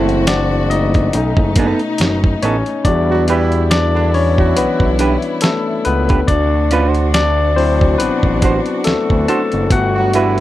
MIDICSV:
0, 0, Header, 1, 8, 480
1, 0, Start_track
1, 0, Tempo, 857143
1, 1597, Time_signature, 4, 2, 24, 8
1, 5825, End_track
2, 0, Start_track
2, 0, Title_t, "Hollow-body jazz guitar"
2, 0, Program_c, 0, 26
2, 0, Note_on_c, 0, 60, 87
2, 0, Note_on_c, 0, 64, 94
2, 0, Note_on_c, 0, 69, 99
2, 140, Note_off_c, 0, 60, 0
2, 141, Note_off_c, 0, 64, 0
2, 145, Note_off_c, 0, 69, 0
2, 880, Note_on_c, 0, 59, 75
2, 888, Note_on_c, 0, 63, 80
2, 892, Note_on_c, 0, 69, 83
2, 1003, Note_off_c, 0, 59, 0
2, 1007, Note_off_c, 0, 63, 0
2, 1009, Note_off_c, 0, 69, 0
2, 1361, Note_on_c, 0, 59, 64
2, 1365, Note_on_c, 0, 63, 66
2, 1372, Note_on_c, 0, 69, 71
2, 1431, Note_off_c, 0, 59, 0
2, 1433, Note_off_c, 0, 63, 0
2, 1436, Note_off_c, 0, 69, 0
2, 1841, Note_on_c, 0, 62, 74
2, 1844, Note_on_c, 0, 67, 91
2, 1848, Note_on_c, 0, 71, 84
2, 2062, Note_off_c, 0, 62, 0
2, 2063, Note_off_c, 0, 67, 0
2, 2065, Note_off_c, 0, 71, 0
2, 2796, Note_on_c, 0, 62, 77
2, 2801, Note_on_c, 0, 67, 75
2, 2804, Note_on_c, 0, 71, 83
2, 2888, Note_off_c, 0, 62, 0
2, 2891, Note_off_c, 0, 67, 0
2, 2892, Note_off_c, 0, 71, 0
2, 3414, Note_on_c, 0, 71, 63
2, 3417, Note_on_c, 0, 67, 62
2, 3422, Note_on_c, 0, 62, 50
2, 3469, Note_off_c, 0, 71, 0
2, 3471, Note_off_c, 0, 67, 0
2, 3473, Note_off_c, 0, 62, 0
2, 3759, Note_on_c, 0, 61, 78
2, 3764, Note_on_c, 0, 65, 96
2, 3770, Note_on_c, 0, 71, 98
2, 3848, Note_off_c, 0, 61, 0
2, 3848, Note_on_c, 0, 62, 78
2, 3854, Note_off_c, 0, 65, 0
2, 3854, Note_on_c, 0, 66, 96
2, 3859, Note_off_c, 0, 71, 0
2, 3859, Note_on_c, 0, 72, 98
2, 3981, Note_off_c, 0, 62, 0
2, 3983, Note_off_c, 0, 66, 0
2, 3986, Note_off_c, 0, 72, 0
2, 4722, Note_on_c, 0, 62, 76
2, 4726, Note_on_c, 0, 66, 77
2, 4732, Note_on_c, 0, 72, 92
2, 4811, Note_off_c, 0, 62, 0
2, 4813, Note_off_c, 0, 66, 0
2, 4816, Note_off_c, 0, 72, 0
2, 5198, Note_on_c, 0, 62, 70
2, 5203, Note_on_c, 0, 66, 82
2, 5206, Note_on_c, 0, 72, 74
2, 5269, Note_off_c, 0, 62, 0
2, 5272, Note_off_c, 0, 66, 0
2, 5273, Note_off_c, 0, 72, 0
2, 5679, Note_on_c, 0, 62, 82
2, 5686, Note_on_c, 0, 66, 94
2, 5689, Note_on_c, 0, 71, 94
2, 5825, Note_off_c, 0, 62, 0
2, 5825, Note_off_c, 0, 66, 0
2, 5825, Note_off_c, 0, 71, 0
2, 5825, End_track
3, 0, Start_track
3, 0, Title_t, "Tine electric piano"
3, 0, Program_c, 1, 4
3, 0, Control_c, 1, 64, 127
3, 0, Note_on_c, 1, 57, 56
3, 0, Note_on_c, 1, 60, 76
3, 0, Note_on_c, 1, 64, 63
3, 0, Note_on_c, 1, 72, 87
3, 136, Note_off_c, 1, 60, 0
3, 153, Note_on_c, 1, 74, 97
3, 163, Note_on_c, 1, 62, 75
3, 167, Note_off_c, 1, 72, 0
3, 378, Note_off_c, 1, 74, 0
3, 383, Note_off_c, 1, 62, 0
3, 392, Note_on_c, 1, 75, 88
3, 402, Note_on_c, 1, 63, 71
3, 633, Note_off_c, 1, 57, 0
3, 633, Note_on_c, 1, 57, 52
3, 634, Note_off_c, 1, 63, 0
3, 638, Note_on_c, 1, 61, 51
3, 641, Note_on_c, 1, 63, 64
3, 645, Control_c, 1, 64, 0
3, 648, Note_off_c, 1, 64, 0
3, 749, Control_c, 1, 64, 127
3, 1333, Note_off_c, 1, 57, 0
3, 1335, Note_off_c, 1, 61, 0
3, 1336, Note_off_c, 1, 63, 0
3, 1358, Note_on_c, 1, 73, 88
3, 1369, Note_on_c, 1, 61, 70
3, 1383, Note_off_c, 1, 75, 0
3, 1586, Note_off_c, 1, 61, 0
3, 1594, Note_on_c, 1, 55, 54
3, 1594, Note_on_c, 1, 74, 91
3, 1597, Note_on_c, 1, 62, 75
3, 1601, Note_on_c, 1, 66, 62
3, 1603, Control_c, 1, 64, 0
3, 1604, Note_off_c, 1, 73, 0
3, 1706, Control_c, 1, 64, 127
3, 1925, Note_off_c, 1, 55, 0
3, 1929, Note_off_c, 1, 66, 0
3, 2053, Note_off_c, 1, 74, 0
3, 2056, Note_off_c, 1, 62, 0
3, 2076, Note_on_c, 1, 74, 99
3, 2088, Note_on_c, 1, 62, 76
3, 2306, Note_off_c, 1, 62, 0
3, 2320, Note_on_c, 1, 73, 89
3, 2323, Note_off_c, 1, 74, 0
3, 2329, Note_on_c, 1, 61, 67
3, 2547, Note_off_c, 1, 61, 0
3, 2556, Note_on_c, 1, 71, 85
3, 2566, Note_off_c, 1, 73, 0
3, 2566, Note_on_c, 1, 59, 72
3, 3019, Note_off_c, 1, 59, 0
3, 3034, Note_on_c, 1, 69, 89
3, 3046, Note_on_c, 1, 57, 70
3, 3051, Note_off_c, 1, 71, 0
3, 3259, Note_off_c, 1, 69, 0
3, 3265, Note_off_c, 1, 57, 0
3, 3275, Note_on_c, 1, 71, 89
3, 3287, Note_on_c, 1, 59, 72
3, 3505, Note_off_c, 1, 59, 0
3, 3514, Note_on_c, 1, 74, 92
3, 3523, Note_off_c, 1, 71, 0
3, 3523, Control_c, 1, 64, 0
3, 3526, Note_on_c, 1, 62, 75
3, 3617, Control_c, 1, 64, 127
3, 3979, Note_off_c, 1, 62, 0
3, 3992, Note_off_c, 1, 74, 0
3, 3998, Note_on_c, 1, 74, 103
3, 4005, Note_on_c, 1, 62, 81
3, 4224, Note_off_c, 1, 62, 0
3, 4235, Note_on_c, 1, 54, 55
3, 4235, Note_on_c, 1, 72, 91
3, 4238, Note_on_c, 1, 60, 73
3, 4240, Note_on_c, 1, 64, 66
3, 4245, Note_off_c, 1, 74, 0
3, 4462, Note_off_c, 1, 60, 0
3, 4471, Note_on_c, 1, 71, 96
3, 4481, Note_on_c, 1, 59, 72
3, 4483, Note_off_c, 1, 72, 0
3, 4934, Note_off_c, 1, 54, 0
3, 4936, Note_off_c, 1, 64, 0
3, 4937, Note_off_c, 1, 59, 0
3, 4953, Note_on_c, 1, 69, 88
3, 4959, Note_on_c, 1, 57, 75
3, 4968, Note_off_c, 1, 71, 0
3, 5178, Note_off_c, 1, 69, 0
3, 5181, Note_off_c, 1, 57, 0
3, 5199, Note_on_c, 1, 81, 107
3, 5204, Note_on_c, 1, 69, 82
3, 5424, Note_off_c, 1, 69, 0
3, 5441, Note_on_c, 1, 57, 58
3, 5443, Control_c, 1, 64, 0
3, 5443, Note_on_c, 1, 59, 53
3, 5444, Note_on_c, 1, 78, 101
3, 5445, Note_off_c, 1, 81, 0
3, 5448, Note_on_c, 1, 66, 80
3, 5559, Control_c, 1, 64, 127
3, 5825, Note_off_c, 1, 57, 0
3, 5825, Note_off_c, 1, 59, 0
3, 5825, Note_off_c, 1, 66, 0
3, 5825, Note_off_c, 1, 78, 0
3, 5825, End_track
4, 0, Start_track
4, 0, Title_t, "String section"
4, 0, Program_c, 2, 48
4, 0, Note_on_c, 2, 52, 68
4, 0, Note_on_c, 2, 57, 68
4, 0, Note_on_c, 2, 66, 85
4, 627, Note_off_c, 2, 66, 0
4, 630, Note_off_c, 2, 52, 0
4, 641, Note_on_c, 2, 47, 76
4, 644, Note_on_c, 2, 63, 83
4, 1579, Note_off_c, 2, 57, 0
4, 1586, Note_on_c, 2, 52, 68
4, 1589, Note_off_c, 2, 47, 0
4, 1589, Note_on_c, 2, 59, 62
4, 1591, Note_off_c, 2, 63, 0
4, 1592, Note_on_c, 2, 64, 77
4, 3492, Note_off_c, 2, 52, 0
4, 3494, Note_off_c, 2, 59, 0
4, 3495, Note_off_c, 2, 64, 0
4, 3518, Note_on_c, 2, 66, 67
4, 3523, Note_on_c, 2, 62, 81
4, 3525, Note_on_c, 2, 48, 68
4, 5421, Note_off_c, 2, 48, 0
4, 5421, Note_off_c, 2, 62, 0
4, 5442, Note_on_c, 2, 59, 66
4, 5443, Note_on_c, 2, 55, 81
4, 5825, Note_off_c, 2, 55, 0
4, 5825, Note_off_c, 2, 59, 0
4, 5825, Note_off_c, 2, 66, 0
4, 5825, End_track
5, 0, Start_track
5, 0, Title_t, "Horn section"
5, 0, Program_c, 3, 61
5, 1730, Note_on_c, 3, 54, 73
5, 1730, Note_on_c, 3, 66, 82
5, 1815, Note_off_c, 3, 54, 0
5, 1815, Note_off_c, 3, 66, 0
5, 1839, Note_on_c, 3, 52, 72
5, 1840, Note_on_c, 3, 64, 83
5, 2030, Note_off_c, 3, 52, 0
5, 2030, Note_off_c, 3, 64, 0
5, 2209, Note_on_c, 3, 50, 62
5, 2209, Note_on_c, 3, 62, 71
5, 2294, Note_off_c, 3, 62, 0
5, 2295, Note_off_c, 3, 50, 0
5, 2448, Note_on_c, 3, 54, 64
5, 2448, Note_on_c, 3, 66, 76
5, 2774, Note_off_c, 3, 54, 0
5, 2774, Note_off_c, 3, 66, 0
5, 5570, Note_on_c, 3, 66, 87
5, 5571, Note_on_c, 3, 54, 76
5, 5655, Note_off_c, 3, 54, 0
5, 5655, Note_off_c, 3, 66, 0
5, 5676, Note_on_c, 3, 52, 82
5, 5677, Note_on_c, 3, 64, 90
5, 5825, Note_off_c, 3, 52, 0
5, 5825, Note_off_c, 3, 64, 0
5, 5825, End_track
6, 0, Start_track
6, 0, Title_t, "Analog synth bass"
6, 0, Program_c, 4, 38
6, 0, Note_on_c, 4, 30, 120
6, 615, Note_off_c, 4, 30, 0
6, 641, Note_on_c, 4, 35, 102
6, 753, Note_off_c, 4, 35, 0
6, 768, Note_on_c, 4, 30, 91
6, 972, Note_off_c, 4, 30, 0
6, 1119, Note_on_c, 4, 30, 92
6, 1321, Note_off_c, 4, 30, 0
6, 1359, Note_on_c, 4, 33, 96
6, 1471, Note_off_c, 4, 33, 0
6, 1598, Note_on_c, 4, 40, 109
6, 2535, Note_off_c, 4, 40, 0
6, 2567, Note_on_c, 4, 35, 48
6, 2618, Note_off_c, 4, 35, 0
6, 2690, Note_on_c, 4, 35, 90
6, 2893, Note_off_c, 4, 35, 0
6, 3284, Note_on_c, 4, 37, 86
6, 3484, Note_off_c, 4, 37, 0
6, 3521, Note_on_c, 4, 38, 116
6, 4456, Note_off_c, 4, 38, 0
6, 4483, Note_on_c, 4, 33, 48
6, 4535, Note_off_c, 4, 33, 0
6, 4614, Note_on_c, 4, 33, 95
6, 4815, Note_off_c, 4, 33, 0
6, 4964, Note_on_c, 4, 38, 48
6, 5016, Note_off_c, 4, 38, 0
6, 5101, Note_on_c, 4, 38, 95
6, 5186, Note_off_c, 4, 38, 0
6, 5338, Note_on_c, 4, 30, 94
6, 5424, Note_off_c, 4, 30, 0
6, 5439, Note_on_c, 4, 31, 127
6, 5825, Note_off_c, 4, 31, 0
6, 5825, End_track
7, 0, Start_track
7, 0, Title_t, "Muted hollow-body jazz guitar strokes"
7, 640, Note_on_c, 9, 29, 49
7, 696, Note_off_c, 9, 29, 0
7, 2559, Note_on_c, 9, 29, 40
7, 2615, Note_off_c, 9, 29, 0
7, 4481, Note_on_c, 9, 29, 48
7, 4537, Note_off_c, 9, 29, 0
7, 5825, End_track
8, 0, Start_track
8, 0, Title_t, "Drums"
8, 50, Note_on_c, 9, 42, 32
8, 106, Note_off_c, 9, 42, 0
8, 152, Note_on_c, 9, 42, 94
8, 154, Note_on_c, 9, 38, 124
8, 208, Note_off_c, 9, 42, 0
8, 210, Note_off_c, 9, 38, 0
8, 397, Note_on_c, 9, 42, 57
8, 453, Note_off_c, 9, 42, 0
8, 528, Note_on_c, 9, 42, 35
8, 531, Note_on_c, 9, 36, 80
8, 584, Note_off_c, 9, 42, 0
8, 587, Note_off_c, 9, 36, 0
8, 635, Note_on_c, 9, 42, 83
8, 691, Note_off_c, 9, 42, 0
8, 766, Note_on_c, 9, 36, 101
8, 822, Note_off_c, 9, 36, 0
8, 871, Note_on_c, 9, 42, 84
8, 874, Note_on_c, 9, 36, 99
8, 927, Note_off_c, 9, 42, 0
8, 930, Note_off_c, 9, 36, 0
8, 1005, Note_on_c, 9, 42, 31
8, 1061, Note_off_c, 9, 42, 0
8, 1111, Note_on_c, 9, 42, 86
8, 1127, Note_on_c, 9, 38, 105
8, 1167, Note_off_c, 9, 42, 0
8, 1183, Note_off_c, 9, 38, 0
8, 1253, Note_on_c, 9, 36, 102
8, 1309, Note_off_c, 9, 36, 0
8, 1358, Note_on_c, 9, 42, 59
8, 1414, Note_off_c, 9, 42, 0
8, 1490, Note_on_c, 9, 42, 35
8, 1546, Note_off_c, 9, 42, 0
8, 1595, Note_on_c, 9, 36, 104
8, 1596, Note_on_c, 9, 42, 73
8, 1651, Note_off_c, 9, 36, 0
8, 1652, Note_off_c, 9, 42, 0
8, 1835, Note_on_c, 9, 42, 62
8, 1891, Note_off_c, 9, 42, 0
8, 1970, Note_on_c, 9, 42, 33
8, 2026, Note_off_c, 9, 42, 0
8, 2077, Note_on_c, 9, 42, 87
8, 2080, Note_on_c, 9, 38, 123
8, 2133, Note_off_c, 9, 42, 0
8, 2136, Note_off_c, 9, 38, 0
8, 2320, Note_on_c, 9, 46, 41
8, 2376, Note_off_c, 9, 46, 0
8, 2454, Note_on_c, 9, 36, 82
8, 2510, Note_off_c, 9, 36, 0
8, 2557, Note_on_c, 9, 42, 84
8, 2613, Note_off_c, 9, 42, 0
8, 2688, Note_on_c, 9, 36, 97
8, 2744, Note_off_c, 9, 36, 0
8, 2794, Note_on_c, 9, 42, 78
8, 2850, Note_off_c, 9, 42, 0
8, 2925, Note_on_c, 9, 42, 32
8, 2981, Note_off_c, 9, 42, 0
8, 3029, Note_on_c, 9, 42, 91
8, 3045, Note_on_c, 9, 38, 100
8, 3085, Note_off_c, 9, 42, 0
8, 3101, Note_off_c, 9, 38, 0
8, 3275, Note_on_c, 9, 42, 58
8, 3331, Note_off_c, 9, 42, 0
8, 3410, Note_on_c, 9, 42, 35
8, 3416, Note_on_c, 9, 36, 91
8, 3466, Note_off_c, 9, 42, 0
8, 3472, Note_off_c, 9, 36, 0
8, 3517, Note_on_c, 9, 36, 110
8, 3518, Note_on_c, 9, 42, 72
8, 3573, Note_off_c, 9, 36, 0
8, 3574, Note_off_c, 9, 42, 0
8, 3756, Note_on_c, 9, 42, 68
8, 3812, Note_off_c, 9, 42, 0
8, 3889, Note_on_c, 9, 42, 34
8, 3945, Note_off_c, 9, 42, 0
8, 3999, Note_on_c, 9, 42, 83
8, 4001, Note_on_c, 9, 38, 127
8, 4055, Note_off_c, 9, 42, 0
8, 4057, Note_off_c, 9, 38, 0
8, 4245, Note_on_c, 9, 46, 42
8, 4301, Note_off_c, 9, 46, 0
8, 4375, Note_on_c, 9, 36, 85
8, 4431, Note_off_c, 9, 36, 0
8, 4479, Note_on_c, 9, 42, 79
8, 4535, Note_off_c, 9, 42, 0
8, 4609, Note_on_c, 9, 36, 98
8, 4665, Note_off_c, 9, 36, 0
8, 4716, Note_on_c, 9, 42, 81
8, 4717, Note_on_c, 9, 36, 99
8, 4772, Note_off_c, 9, 42, 0
8, 4773, Note_off_c, 9, 36, 0
8, 4848, Note_on_c, 9, 42, 35
8, 4904, Note_off_c, 9, 42, 0
8, 4952, Note_on_c, 9, 42, 83
8, 4968, Note_on_c, 9, 38, 100
8, 5008, Note_off_c, 9, 42, 0
8, 5024, Note_off_c, 9, 38, 0
8, 5096, Note_on_c, 9, 36, 99
8, 5152, Note_off_c, 9, 36, 0
8, 5199, Note_on_c, 9, 42, 57
8, 5255, Note_off_c, 9, 42, 0
8, 5329, Note_on_c, 9, 42, 33
8, 5385, Note_off_c, 9, 42, 0
8, 5435, Note_on_c, 9, 36, 110
8, 5435, Note_on_c, 9, 42, 84
8, 5491, Note_off_c, 9, 36, 0
8, 5491, Note_off_c, 9, 42, 0
8, 5676, Note_on_c, 9, 42, 70
8, 5732, Note_off_c, 9, 42, 0
8, 5825, End_track
0, 0, End_of_file